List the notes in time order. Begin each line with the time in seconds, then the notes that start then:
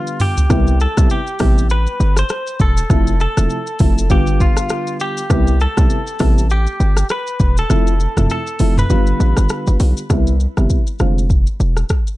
Already playing: D3 G3 B3 F4
0.07 shaker
0.20 G4, mid tom, open hi-hat, shaker
0.37 floor tom, shaker
0.50 C2 C3 G3 B3 E4, kick, cross-stick, shaker
0.67 shaker
0.80 A4, shaker
0.97 B1 C3 G3 B3 E4, kick, cross-stick, shaker
1.10 G4, shaker
1.27 shaker
1.39 A1 C3 G3 B3 E4, kick, cross-stick, open hi-hat, shaker
1.58 shaker
1.70 B4, shaker
1.87 shaker
2.00 G1, shaker
2.17 C5, cross-stick, shaker
2.29 cross-stick, shaker
2.47 shaker
2.60 E1 A4, kick, shaker
2.77 shaker
2.90 F1 C3 F3 A3 E4, kick, cross-stick, shaker
3.07 shaker
3.20 A4, shaker
3.37 E1 C3 F3 A3 E4, cross-stick, shaker
3.50 shaker
3.67 shaker
3.79 F1 C3 F3 A3 E4, kick, open hi-hat, shaker
3.98 shaker
4.10 G1 D3 G3 B3 F4 G4, kick, shaker
4.27 shaker
4.40 F4, kick, shaker
4.57 cross-stick, shaker
4.69 cross-stick, shaker
4.87 shaker
5.00 G4, shaker
5.17 shaker
5.30 C2 C3 G3 B3 E4, kick, cross-stick, shaker
5.47 shaker
5.60 A4, shaker
5.77 B1 C3 G3 B3 E4, kick, cross-stick, shaker
5.90 shaker
6.07 shaker
6.19 A1 C3 G3 B3 E4, kick, cross-stick, open hi-hat, shaker
6.38 shaker
6.50 G4, shaker
6.67 shaker
6.80 G1, shaker
6.97 cross-stick, shaker
7.09 B4, cross-stick, shaker
7.27 shaker
7.40 E1, kick, shaker
7.57 A4, shaker
7.70 F1 C3 F3 A3 E4, cross-stick, shaker
7.87 shaker
8.00 shaker
8.17 E1 C3 F3 A3 E4, cross-stick, mid tom, shaker
8.30 A4, shaker
8.47 shaker
8.59 F1 C3 F3 A3 E4, open hi-hat, shaker
8.77 B4, mid tom, shaker
8.90 G1 D3 G3 B3 F4, shaker
9.07 shaker
9.20 A1, shaker
9.37 G1, cross-stick, shaker
9.49 cross-stick, shaker
9.67 G1, shaker
9.80 B1, open hi-hat, shaker
9.97 shaker
10.10 C2 C3 G3 B3 E4, kick, cross-stick, shaker
10.27 shaker
10.40 shaker
10.57 G1 C3 G3 B3 E4, cross-stick, shaker
10.70 kick, shaker
10.87 shaker
10.99 F1 D3 G#3 C4 F4, cross-stick, shaker
11.18 shaker
11.30 kick, shaker
11.47 shaker
11.60 E1, shaker
11.77 cross-stick, shaker
11.89 kick, cross-stick, shaker
12.07 shaker